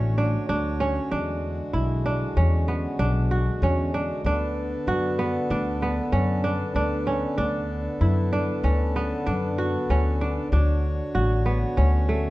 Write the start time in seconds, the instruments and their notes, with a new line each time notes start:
Already playing: upright bass A1, harmonium D3 F#4 C#5, kora A3 B3 C#4
0.18 kora D4
0.49 upright bass D2, kora D4
0.80 kora C#4
1.11 upright bass E2, harmonium G#3, kora D4
1.73 upright bass B1, kora E4
2.06 kora D4
2.37 upright bass E2, kora C#4
2.68 kora B3
2.99 upright bass B1, kora D4
3.31 kora F#4
3.62 upright bass E2, kora C#4
3.94 kora D4
4.24 upright bass D2, harmonium B3 A4, kora D4
4.87 upright bass F#2, kora F#4
5.19 kora B3
5.50 upright bass D2, kora D4
5.82 kora B3
6.12 upright bass F#2, kora C#4
6.44 kora D4
6.75 upright bass D2, kora D4
7.07 kora C#4
7.38 upright bass D2, kora D4
8.01 upright bass F#2, kora E4
8.33 kora D4
8.64 upright bass D2, kora C#4
8.96 kora B3
9.26 upright bass F#2, kora D4
9.58 kora F#4
9.89 upright bass D2, kora C#4
10.21 kora D4
10.52 upright bass D2, kora D4, harmonium F#4 C#5
11.15 upright bass A1, kora F#4
11.46 kora B3
11.77 upright bass D2, kora C#4
12.09 kora A3